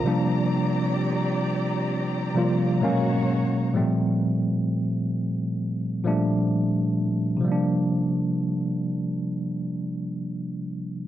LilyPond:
<<
  \new Staff \with { instrumentName = "String section" } { \time 4/4 \key bes \major \tempo 4 = 65 << { bes''1 | r1 | r1 | } \\ { <c' g' d''>2. <aes, ces ges' des''>4 | r1 | r1 | } >> }
  \new Staff \with { instrumentName = "Tine electric piano" } { \time 4/4 \key bes \major <c' f'>16 r2. r8. | r1 | r1 | }
  \new Staff \with { instrumentName = "Tine electric piano" } { \clef bass \time 4/4 \key bes \major <c f g bes d'>4. r4 <c f g bes f'>8 <bes, ces ges aes bes des'>4 | <a, bes, f g a c'>4. r4 <bes, f g a d'>4 r8 | <c f g bes d'>1 | }
>>